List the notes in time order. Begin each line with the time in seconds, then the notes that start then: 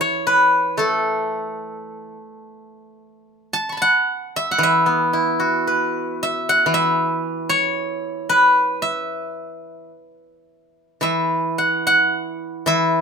Already playing: E3 E5
0.01 C#5
0.27 B4
0.77 A3 A4
3.53 A5
3.69 B5 C#6
3.77 A5
3.82 F#5
4.36 E5
4.51 F#5
4.58 E3
4.63 E5
4.86 B3
5.13 E4
5.40 F#4
5.67 B4
6.23 E5
6.49 F#5
6.66 E3
6.74 E5
7.49 C#5
8.29 B4
8.82 E5
11.01 E3 E5
11.58 F#5
11.87 F#5
12.66 E3 E5